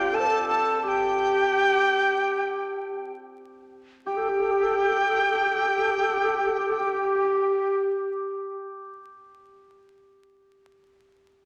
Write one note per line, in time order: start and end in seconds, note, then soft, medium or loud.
0.00 2.83 C4 medium
0.00 3.04 D4 medium
0.00 2.86 F4 medium
0.00 0.11 G4 medium
0.00 0.83 G4 medium
0.00 0.16 G5 medium
0.12 0.21 A4 medium
0.12 0.50 A4 medium
0.12 0.48 A5 loud
0.20 0.28 C5 medium
0.26 0.82 A4 medium
0.49 3.43 A4 medium
0.49 0.77 A5 medium
0.77 0.83 A5 medium
0.82 3.11 G4 medium
0.82 3.97 G4 medium
0.82 0.89 A5 medium
0.88 3.16 G5 loud
4.06 4.18 G4 medium
4.06 7.83 G5 medium
4.17 4.28 G4 medium
4.17 4.30 A4 medium
4.28 4.39 G4 medium
4.28 4.42 G4 medium
4.39 4.50 G4 medium
4.39 4.53 A4 medium
4.51 4.60 G4 medium
4.51 4.64 G4 medium
4.60 4.70 G4 soft
4.60 4.78 A4 medium
4.71 4.82 G4 medium
4.76 4.90 G4 medium
4.82 4.91 G4 soft
4.88 5.02 G4 medium
4.88 5.00 A4 medium
4.99 5.12 G4 medium
4.99 5.12 G4 soft
5.10 5.23 G4 medium
5.10 5.22 A4 medium
5.20 5.33 G4 medium
5.20 5.35 G4 soft
5.32 5.45 G4 medium
5.32 5.45 A4 medium
5.43 5.58 G4 medium
5.43 5.55 G4 medium
5.56 5.65 G4 medium
5.56 5.70 A4 medium
5.65 5.77 G4 soft
5.65 5.81 G4 medium
5.77 5.86 G4 medium
5.77 5.92 A4 medium
5.86 5.97 G4 soft
5.91 6.04 G4 medium
5.97 6.07 G4 medium
6.02 6.15 A4 medium
6.08 6.17 G4 soft
6.13 6.26 G4 medium
6.13 6.27 G4 medium
6.24 6.38 G4 medium
6.24 6.38 A4 medium
6.36 6.49 G4 medium
6.36 6.48 G4 medium
6.47 6.60 G4 soft
6.47 6.60 A4 medium
6.59 6.71 G4 medium
6.70 6.80 G4 soft
6.70 6.81 A4 medium
6.79 8.51 G4 loud
6.79 6.94 G4 medium
6.94 7.04 G4 soft
7.04 7.15 G4 medium
7.15 7.24 G4 medium
7.24 7.34 G4 medium
7.34 10.48 G4 medium